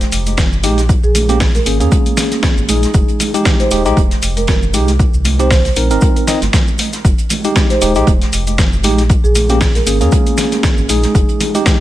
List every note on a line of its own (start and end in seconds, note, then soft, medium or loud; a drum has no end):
0.01 snare medium
0.01 closed hi-hat medium
0.01 maracas soft
0.12 0.65 F1 medium
0.12 closed hi-hat medium
0.12 open hi-hat loud
0.12 maracas medium
0.26 closed hi-hat medium
0.26 high conga medium
0.26 maracas soft
0.37 kick loud
0.37 snare loud
0.37 closed hi-hat loud
0.37 maracas medium
0.52 low conga medium
0.52 maracas soft
0.63 0.94 A#1 loud
0.63 0.80 G#3 medium
0.63 0.81 D#4 medium
0.63 0.81 G4 loud
0.63 closed hi-hat medium
0.63 open hi-hat loud
0.63 high conga loud
0.63 maracas medium
0.78 snare soft
0.78 closed hi-hat medium
0.78 maracas soft
0.89 kick loud
0.89 closed hi-hat medium
0.89 maracas soft
1.04 1.59 A#1 medium
1.04 1.16 G#4 medium
1.04 maracas soft
1.15 closed hi-hat medium
1.15 open hi-hat loud
1.15 high conga loud
1.15 low conga medium
1.15 maracas loud
1.29 1.38 A#3 medium
1.29 1.38 C#4 medium
1.29 1.38 G4 loud
1.29 closed hi-hat medium
1.29 maracas soft
1.40 kick loud
1.40 snare loud
1.40 open hi-hat medium
1.40 maracas medium
1.55 1.92 A#4 medium
1.55 snare medium
1.55 closed hi-hat soft
1.55 high conga medium
1.55 maracas soft
1.66 1.82 G#1 loud
1.66 1.77 A#3 medium
1.66 1.77 C#4 medium
1.66 1.77 G#4 medium
1.66 closed hi-hat medium
1.66 open hi-hat medium
1.66 maracas loud
1.80 1.87 F2 medium
1.80 2.66 A#3 medium
1.80 2.66 C#4 medium
1.80 2.66 G#4 medium
1.80 closed hi-hat medium
1.80 maracas soft
1.92 kick loud
1.92 closed hi-hat medium
1.92 high conga loud
1.92 maracas medium
2.06 closed hi-hat medium
2.06 maracas soft
2.17 snare medium
2.17 closed hi-hat medium
2.17 open hi-hat loud
2.17 maracas medium
2.31 snare medium
2.31 closed hi-hat medium
2.31 high conga medium
2.31 maracas soft
2.43 kick loud
2.43 snare loud
2.43 closed hi-hat medium
2.43 maracas medium
2.57 2.64 G#1 medium
2.57 low conga medium
2.57 maracas soft
2.68 2.85 A#1 medium
2.68 3.31 G#3 medium
2.68 3.31 D#4 medium
2.68 3.31 G#4 medium
2.68 closed hi-hat medium
2.68 open hi-hat loud
2.68 high conga loud
2.68 maracas medium
2.83 snare medium
2.83 closed hi-hat medium
2.83 maracas soft
2.94 3.03 F1 loud
2.94 kick loud
2.94 closed hi-hat medium
2.94 maracas medium
3.08 closed hi-hat soft
3.08 maracas soft
3.20 closed hi-hat medium
3.20 open hi-hat loud
3.20 high conga medium
3.20 low conga medium
3.20 maracas loud
3.34 3.68 G#3 medium
3.34 3.69 D#4 medium
3.34 3.69 G4 medium
3.34 closed hi-hat soft
3.34 closed hi-hat medium
3.34 maracas soft
3.45 kick loud
3.45 snare loud
3.45 closed hi-hat medium
3.45 maracas medium
3.60 3.72 C5 medium
3.60 snare medium
3.60 closed hi-hat soft
3.60 high conga medium
3.60 maracas soft
3.71 3.87 D#1 loud
3.71 3.82 G#3 medium
3.71 3.82 D#4 medium
3.71 3.82 G4 medium
3.71 closed hi-hat medium
3.71 open hi-hat medium
3.71 maracas medium
3.85 3.92 C2 medium
3.85 4.00 G#3 medium
3.85 4.00 D#4 medium
3.85 4.00 G4 loud
3.85 closed hi-hat medium
3.85 closed hi-hat soft
3.85 maracas soft
3.97 4.14 D#1 medium
3.97 kick loud
3.97 closed hi-hat medium
3.97 high conga loud
3.97 maracas soft
4.11 snare soft
4.11 closed hi-hat medium
4.11 maracas soft
4.22 4.75 F1 loud
4.22 closed hi-hat medium
4.22 open hi-hat loud
4.22 maracas medium
4.37 4.44 A#4 medium
4.37 closed hi-hat medium
4.37 high conga medium
4.37 maracas soft
4.47 kick loud
4.47 snare loud
4.47 closed hi-hat medium
4.47 maracas medium
4.62 low conga medium
4.62 maracas soft
4.73 5.05 C2 loud
4.73 4.91 G#3 medium
4.73 4.91 D#4 medium
4.73 4.91 G4 loud
4.73 closed hi-hat medium
4.73 open hi-hat loud
4.73 high conga medium
4.73 maracas loud
4.88 snare soft
4.88 closed hi-hat medium
4.88 maracas soft
4.99 kick loud
4.99 closed hi-hat medium
4.99 maracas soft
5.14 5.69 C2 medium
5.14 maracas soft
5.25 closed hi-hat medium
5.25 open hi-hat loud
5.25 high conga loud
5.25 low conga medium
5.25 maracas loud
5.39 5.48 C4 medium
5.39 5.48 D#4 medium
5.39 5.48 G4 loud
5.39 5.47 C5 medium
5.39 closed hi-hat medium
5.39 maracas soft
5.50 5.60 C5 medium
5.50 kick loud
5.50 snare loud
5.50 open hi-hat medium
5.50 maracas soft
5.65 snare medium
5.65 closed hi-hat medium
5.65 high conga medium
5.65 maracas soft
5.76 5.92 A#1 loud
5.76 5.87 C4 medium
5.76 5.87 D#4 medium
5.76 5.87 A#4 medium
5.76 closed hi-hat medium
5.76 open hi-hat medium
5.76 maracas medium
5.90 5.98 G1 medium
5.90 6.25 C4 medium
5.90 6.25 D#4 medium
5.90 6.26 A#4 medium
5.90 closed hi-hat medium
5.90 maracas soft
6.01 6.11 A#4 medium
6.01 kick loud
6.01 closed hi-hat medium
6.01 high conga loud
6.01 maracas medium
6.16 6.24 A#4 medium
6.16 closed hi-hat medium
6.16 maracas soft
6.27 6.39 C4 medium
6.27 6.39 D#4 medium
6.27 6.39 D#5 medium
6.27 snare medium
6.27 closed hi-hat medium
6.27 open hi-hat loud
6.27 maracas medium
6.41 6.49 G1 loud
6.41 snare medium
6.41 closed hi-hat medium
6.41 high conga medium
6.41 maracas soft
6.53 kick loud
6.53 snare loud
6.53 closed hi-hat medium
6.53 maracas medium
6.68 low conga medium
6.68 maracas soft
6.78 closed hi-hat medium
6.78 open hi-hat medium
6.78 high conga medium
6.78 maracas medium
6.93 snare soft
6.93 closed hi-hat medium
6.93 maracas soft
7.05 7.13 F1 loud
7.05 kick loud
7.05 closed hi-hat medium
7.05 maracas medium
7.18 closed hi-hat soft
7.18 maracas soft
7.29 closed hi-hat medium
7.29 open hi-hat loud
7.29 high conga medium
7.29 low conga medium
7.29 maracas medium
7.44 7.79 G#3 medium
7.44 7.79 D#4 medium
7.44 7.79 G4 medium
7.44 closed hi-hat soft
7.44 closed hi-hat medium
7.44 maracas soft
7.55 kick loud
7.55 snare loud
7.55 closed hi-hat medium
7.55 maracas soft
7.70 7.83 C5 medium
7.70 snare medium
7.70 closed hi-hat medium
7.70 high conga medium
7.70 maracas soft
7.81 7.97 D#1 loud
7.81 7.92 G#3 medium
7.81 7.92 D#4 medium
7.81 7.93 G4 medium
7.81 closed hi-hat medium
7.81 open hi-hat medium
7.81 maracas medium
7.95 8.03 C2 medium
7.95 8.10 G#3 loud
7.95 8.11 D#4 medium
7.95 8.11 G4 loud
7.95 closed hi-hat medium
7.95 closed hi-hat soft
7.95 maracas soft
8.07 8.24 D#1 medium
8.07 kick loud
8.07 closed hi-hat medium
8.07 high conga medium
8.07 maracas soft
8.22 snare medium
8.22 closed hi-hat soft
8.22 maracas soft
8.33 8.86 F1 loud
8.33 closed hi-hat medium
8.33 open hi-hat loud
8.33 maracas medium
8.47 closed hi-hat medium
8.47 high conga medium
8.47 maracas soft
8.58 kick loud
8.58 snare loud
8.58 closed hi-hat medium
8.58 maracas medium
8.73 low conga medium
8.73 maracas soft
8.83 9.15 A#1 loud
8.83 9.01 G#3 medium
8.83 9.01 D#4 medium
8.83 9.01 G4 loud
8.83 closed hi-hat medium
8.83 open hi-hat medium
8.83 high conga medium
8.83 maracas medium
8.98 snare soft
8.98 closed hi-hat medium
8.98 maracas soft
9.09 kick loud
9.09 closed hi-hat medium
9.09 maracas soft
9.24 9.80 A#1 medium
9.24 9.36 G#4 medium
9.24 maracas soft
9.35 closed hi-hat medium
9.35 open hi-hat loud
9.35 high conga medium
9.35 low conga medium
9.35 maracas medium
9.49 9.58 A#3 medium
9.49 9.58 C#4 medium
9.49 9.59 G4 loud
9.49 closed hi-hat medium
9.49 maracas soft
9.61 kick loud
9.61 snare loud
9.61 open hi-hat medium
9.61 maracas medium
9.75 10.12 A#4 medium
9.75 snare medium
9.75 closed hi-hat medium
9.75 high conga medium
9.75 maracas soft
9.86 10.02 G#1 loud
9.86 9.97 A#3 medium
9.86 9.98 C#4 medium
9.86 9.98 G#4 medium
9.86 closed hi-hat medium
9.86 open hi-hat medium
9.86 maracas medium
10.00 10.08 F2 medium
10.00 10.86 A#3 medium
10.00 10.87 C#4 medium
10.00 10.87 G#4 medium
10.00 closed hi-hat medium
10.00 maracas soft
10.12 kick loud
10.12 closed hi-hat medium
10.12 high conga medium
10.12 maracas medium
10.27 closed hi-hat medium
10.27 maracas soft
10.37 snare medium
10.37 closed hi-hat medium
10.37 open hi-hat loud
10.37 maracas medium
10.52 snare medium
10.52 closed hi-hat medium
10.52 high conga medium
10.52 maracas soft
10.63 kick loud
10.63 snare loud
10.63 closed hi-hat medium
10.63 maracas medium
10.78 10.85 G#1 medium
10.78 low conga medium
10.78 maracas soft
10.89 11.06 A#1 medium
10.89 11.51 G#3 medium
10.89 11.51 D#4 medium
10.89 11.52 G#4 medium
10.89 closed hi-hat medium
10.89 open hi-hat medium
10.89 high conga medium
10.89 maracas medium
11.03 snare soft
11.03 closed hi-hat medium
11.03 maracas soft
11.15 11.24 F1 loud
11.15 kick loud
11.15 closed hi-hat medium
11.15 maracas soft
11.29 closed hi-hat soft
11.29 maracas soft
11.40 closed hi-hat medium
11.40 open hi-hat loud
11.40 high conga medium
11.40 low conga medium
11.40 maracas medium
11.54 11.80 G#3 medium
11.54 11.80 D#4 medium
11.54 11.80 G4 medium
11.54 closed hi-hat soft
11.54 closed hi-hat medium
11.54 maracas soft
11.66 kick loud
11.66 snare loud
11.66 closed hi-hat loud
11.66 maracas soft